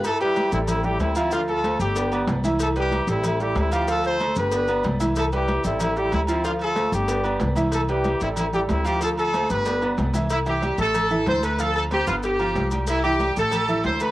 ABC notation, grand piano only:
X:1
M:4/4
L:1/8
Q:1/4=187
K:C
V:1 name="Grand piano"
z [G,GB]2 [G,GA]2 [G,GA]2 [F,Ff] | [F,Ff]2 [A,Ac]2 [B,Bd] [B,Bd]2 [E,Ee]- | [E,Ee] [G,GB]2 [G,GA]2 [G,GA]2 [F,Ff] | [F,Ff]2 [A,Ac]2 [B,Bd] [B,Bd]2 [E,Ee]- |
[E,Ee] [G,GB]2 [G,GA]2 [G,GA]2 [F,Ff] | [F,Ff]2 [A,Ac]2 [B,Bd] [B,Bd]2 [E,Ee]- | [E,Ee] [G,GB]2 [G,GA]2 [G,GA]2 [F,Ff] | [F,Ff]2 [A,Ac]2 [B,Bd] [B,Bd]2 [E,Ee] |
z [E,Ee] [G,Gg] [A,Aa]2 [E,Ee]2 [A,Aa] | [F,Ff]2 [Ccc'] [B,Bb]2 [F,Ff]2 [G,Gg]- | [G,Gg] [E,Ee] [G,Gg] [A,Aa]2 [E,Ee]2 [A,Aa] |]